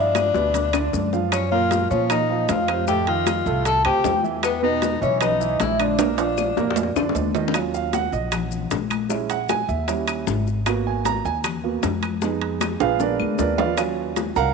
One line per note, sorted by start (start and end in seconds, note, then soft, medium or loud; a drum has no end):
0.00 0.29 G2 medium
0.00 0.28 F3 medium
0.00 1.08 D4 medium
0.00 0.28 F4 medium
0.00 1.09 D5 medium
0.00 0.28 F5 medium
0.15 high bongo medium
0.15 high conga loud
0.15 high timbale loud
0.15 claves medium
0.15 maracas medium
0.34 0.89 D2 medium
0.34 0.67 B2 medium
0.34 0.67 B3 medium
0.34 0.67 B4 medium
0.34 high bongo medium
0.34 high conga soft
0.34 maracas soft
0.54 low bongo medium
0.54 high conga soft
0.54 high timbale medium
0.54 maracas medium
0.73 1.06 D3 medium
0.73 1.06 D4 medium
0.73 1.06 D5 medium
0.73 low bongo medium
0.73 high conga soft
0.73 high timbale medium
0.73 claves medium
0.73 maracas medium
0.93 1.85 F#2 medium
0.93 low bongo medium
0.93 high conga medium
0.93 maracas medium
1.13 1.45 F3 medium
1.13 1.45 F4 medium
1.13 1.45 F5 medium
1.13 low bongo medium
1.13 maracas soft
1.32 1.50 C#4 medium
1.32 1.51 C#5 loud
1.32 high bongo medium
1.32 high conga soft
1.32 high timbale loud
1.32 claves medium
1.32 maracas medium
1.51 1.84 A#2 medium
1.51 1.84 A#3 medium
1.51 1.88 F4 medium
1.51 1.84 A#4 medium
1.51 1.92 F5 medium
1.71 high bongo medium
1.71 high conga loud
1.71 high timbale medium
1.71 maracas medium
1.90 2.45 A#2 loud
1.90 2.07 F3 medium
1.90 2.08 C#4 medium
1.90 2.07 F4 medium
1.90 2.09 C#5 medium
1.90 2.07 F5 medium
1.90 high conga soft
1.90 maracas soft
2.10 2.26 A#3 medium
2.10 2.47 D#4 medium
2.10 2.26 A#4 medium
2.10 2.46 D#5 medium
2.10 2.26 A#5 medium
2.10 high bongo medium
2.10 high conga soft
2.10 low conga medium
2.10 high timbale loud
2.10 claves medium
2.10 maracas medium
2.29 2.61 F3 medium
2.29 2.62 F4 medium
2.29 2.62 F5 medium
2.49 3.40 F2 medium
2.49 2.85 F4 medium
2.49 2.89 F5 medium
2.49 high bongo medium
2.49 low bongo medium
2.49 high conga medium
2.49 high timbale medium
2.49 low timbale medium
2.49 maracas medium
2.68 2.84 C3 medium
2.68 2.84 C4 medium
2.68 2.85 C5 medium
2.68 high conga medium
2.68 high timbale medium
2.68 claves medium
2.68 maracas soft
2.87 3.04 A2 medium
2.87 3.04 A3 medium
2.87 3.06 G4 medium
2.87 3.04 A4 medium
2.87 3.08 G5 loud
2.87 high bongo medium
2.87 high conga soft
2.87 maracas medium
3.07 3.39 D#3 medium
3.07 3.39 D#4 medium
3.07 3.62 F4 medium
3.07 3.39 D#5 medium
3.07 3.62 F5 medium
3.07 high timbale medium
3.27 high bongo medium
3.27 high conga loud
3.27 high timbale medium
3.27 claves medium
3.27 maracas medium
3.46 3.82 C2 medium
3.46 3.78 A2 medium
3.46 3.78 A3 medium
3.46 3.78 A4 medium
3.46 high bongo soft
3.46 high conga soft
3.46 maracas soft
3.65 3.84 A4 medium
3.65 3.86 A5 loud
3.65 high bongo medium
3.65 high conga soft
3.65 high timbale medium
3.65 maracas medium
3.85 4.03 D2 medium
3.85 4.17 C3 medium
3.85 4.17 C4 medium
3.85 4.21 G4 medium
3.85 4.17 C5 medium
3.85 4.21 G5 loud
3.85 high bongo soft
3.85 high conga soft
3.85 high timbale medium
3.85 claves medium
4.04 4.96 E2 medium
4.04 high bongo medium
4.04 low bongo medium
4.04 high conga medium
4.04 low timbale medium
4.04 maracas medium
4.23 4.55 E3 medium
4.23 4.56 E4 medium
4.23 4.56 E5 medium
4.23 high bongo soft
4.23 high conga medium
4.23 maracas soft
4.43 4.61 B3 medium
4.43 4.64 B4 loud
4.43 high bongo medium
4.43 high conga soft
4.43 high timbale medium
4.43 claves medium
4.43 maracas medium
4.63 4.94 B2 medium
4.63 4.95 B3 medium
4.63 4.99 D#4 medium
4.63 4.95 B4 medium
4.63 5.03 D#5 medium
4.63 high conga soft
4.82 high bongo medium
4.82 high conga medium
4.82 high timbale medium
4.82 maracas medium
5.02 5.56 B1 loud
5.02 5.17 E3 medium
5.02 5.20 C#4 medium
5.02 5.18 E4 medium
5.02 5.20 C#5 medium
5.02 5.18 E5 medium
5.02 high conga soft
5.02 maracas soft
5.21 5.37 B3 medium
5.21 5.57 D#4 medium
5.21 5.37 B4 medium
5.21 5.62 D#5 medium
5.21 5.37 B5 medium
5.21 high bongo medium
5.21 high conga soft
5.21 low conga medium
5.21 high timbale medium
5.21 claves medium
5.21 maracas medium
5.40 5.72 E3 medium
5.40 5.72 E4 medium
5.40 5.73 E5 medium
5.40 high conga soft
5.40 maracas medium
5.60 6.51 A#1 medium
5.60 5.78 E4 medium
5.60 5.79 E5 medium
5.60 high bongo medium
5.60 low bongo medium
5.60 high conga medium
5.60 high timbale medium
5.60 maracas medium
5.79 5.95 D3 medium
5.79 5.95 D4 medium
5.79 7.12 D4 medium
5.79 5.96 D5 medium
5.79 7.12 D5 medium
5.79 high conga medium
5.79 high timbale medium
5.79 claves medium
5.79 maracas soft
5.99 6.15 A#2 medium
5.99 6.15 A#3 medium
5.99 6.15 A#4 medium
5.99 high bongo medium
5.99 high timbale loud
5.99 maracas medium
6.18 6.50 F3 medium
6.18 6.50 F4 medium
6.18 6.50 F5 medium
6.18 high conga soft
6.18 high timbale loud
6.18 maracas medium
6.38 high bongo medium
6.38 high conga medium
6.38 claves medium
6.38 maracas medium
6.57 6.93 F2 medium
6.57 6.89 A#2 medium
6.57 6.89 A#3 medium
6.57 6.89 A#4 medium
6.57 high bongo loud
6.57 high conga soft
6.57 maracas soft
6.71 high bongo medium
6.76 low timbale medium
6.76 maracas medium
6.83 high bongo medium
6.96 7.14 F2 medium
6.96 7.28 D3 medium
6.96 7.28 D4 medium
6.96 7.28 D5 medium
6.96 low bongo medium
6.96 claves medium
6.96 maracas medium
7.09 low bongo medium
7.15 8.07 D#2 medium
7.15 high conga medium
7.15 low timbale medium
7.15 maracas medium
7.35 7.51 D#3 medium
7.35 7.51 D#4 medium
7.35 7.51 D#5 medium
7.35 high conga medium
7.35 low timbale medium
7.35 maracas soft
7.48 low bongo medium
7.54 9.06 F#3 medium
7.54 9.06 C#4 soft
7.54 9.07 F4 medium
7.54 high bongo medium
7.54 high conga soft
7.54 high timbale loud
7.54 claves medium
7.54 maracas medium
7.74 7.93 F5 medium
7.74 maracas medium
7.93 8.13 F#5 medium
7.93 high bongo medium
7.93 high conga medium
7.93 high timbale medium
7.93 maracas medium
8.12 8.67 A#1 medium
8.12 8.32 D#5 medium
8.12 high conga soft
8.12 maracas soft
8.32 high bongo medium
8.32 high conga soft
8.32 low conga medium
8.32 high timbale medium
8.32 claves medium
8.32 maracas medium
8.51 high conga soft
8.51 low conga medium
8.51 maracas medium
8.71 9.63 A#1 medium
8.71 high bongo medium
8.71 low bongo medium
8.71 high conga medium
8.71 high timbale medium
8.71 maracas medium
8.90 high conga medium
8.90 high timbale medium
8.90 claves medium
8.90 maracas soft
9.09 9.36 G#3 medium
9.09 9.36 C#4 medium
9.09 9.36 E4 medium
9.09 high bongo medium
9.09 high conga soft
9.09 maracas medium
9.30 9.49 F#5 medium
9.30 high conga soft
9.30 high timbale medium
9.30 maracas medium
9.49 9.68 G#5 loud
9.49 high bongo medium
9.49 high conga loud
9.49 high timbale medium
9.49 claves medium
9.49 maracas medium
9.69 10.23 D#2 medium
9.69 9.88 E5 medium
9.69 high bongo soft
9.69 high conga soft
9.69 maracas soft
9.88 10.44 G3 medium
9.88 10.44 C#4 medium
9.88 10.44 E4 medium
9.88 high bongo medium
9.88 high conga soft
9.88 high timbale medium
9.88 maracas medium
10.08 high bongo soft
10.08 high conga soft
10.08 high timbale medium
10.08 claves medium
10.08 maracas medium
10.27 11.19 G#1 medium
10.27 high bongo medium
10.27 low bongo medium
10.27 high conga medium
10.27 maracas medium
10.47 high bongo soft
10.47 maracas soft
10.66 11.22 A#3 medium
10.66 11.22 B3 medium
10.66 11.22 F#4 medium
10.66 high bongo medium
10.66 high conga soft
10.66 high timbale medium
10.66 claves medium
10.66 maracas medium
10.85 11.05 G#5 medium
10.85 high conga soft
11.05 11.24 A#5 loud
11.05 high bongo medium
11.05 high conga loud
11.05 high timbale medium
11.05 maracas medium
11.25 11.79 D#2 medium
11.25 11.37 G#5 loud
11.25 high conga soft
11.25 maracas soft
11.44 high bongo medium
11.44 high conga soft
11.44 low conga medium
11.44 high timbale medium
11.44 claves medium
11.44 maracas medium
11.63 11.81 A#3 medium
11.63 11.81 B3 soft
11.63 11.82 F#4 medium
11.63 high conga soft
11.83 12.75 F2 medium
11.83 high bongo medium
11.83 low bongo medium
11.83 high conga medium
11.83 high timbale medium
11.83 low timbale medium
11.83 maracas medium
12.02 high conga medium
12.02 high timbale medium
12.02 claves medium
12.02 maracas soft
12.22 12.96 G#3 medium
12.22 12.96 B3 medium
12.22 12.97 D#4 medium
12.22 high bongo medium
12.22 high conga soft
12.22 maracas medium
12.42 high timbale medium
12.61 high bongo medium
12.61 high conga loud
12.61 high timbale medium
12.61 claves medium
12.61 maracas medium
12.80 13.17 A#1 loud
12.80 13.00 F4 medium
12.80 13.00 G#4 medium
12.80 12.99 B4 medium
12.80 12.99 F5 medium
12.80 high timbale medium
12.80 maracas soft
12.99 13.74 G#3 medium
12.99 13.74 B3 soft
12.99 13.37 D4 medium
12.99 13.37 A#4 medium
12.99 13.37 B4 medium
12.99 13.36 D5 medium
12.99 low bongo medium
12.99 high conga soft
12.99 maracas medium
13.19 13.38 D2 medium
13.19 high conga loud
13.19 claves medium
13.39 14.30 D#2 medium
13.39 13.58 D4 medium
13.39 13.58 A#4 medium
13.39 13.57 B4 medium
13.39 13.57 D5 medium
13.39 low bongo medium
13.39 low timbale medium
13.39 maracas medium
13.58 13.77 F4 medium
13.58 13.77 B4 medium
13.58 13.77 D5 medium
13.58 13.77 F5 medium
13.58 low bongo medium
13.58 low conga medium
13.58 low timbale loud
13.58 maracas soft
13.77 14.51 F#3 medium
13.77 14.52 C#4 medium
13.77 14.52 F4 medium
13.77 high bongo medium
13.77 high conga soft
13.77 high timbale medium
13.77 claves medium
13.77 maracas medium
14.16 high bongo medium
14.16 high conga loud
14.16 high timbale medium
14.16 maracas medium
14.36 14.54 C2 medium
14.36 14.54 A#4 medium
14.36 14.54 F5 medium
14.36 14.50 F#5 loud
14.36 14.54 A#5 loud
14.36 high conga soft
14.36 maracas soft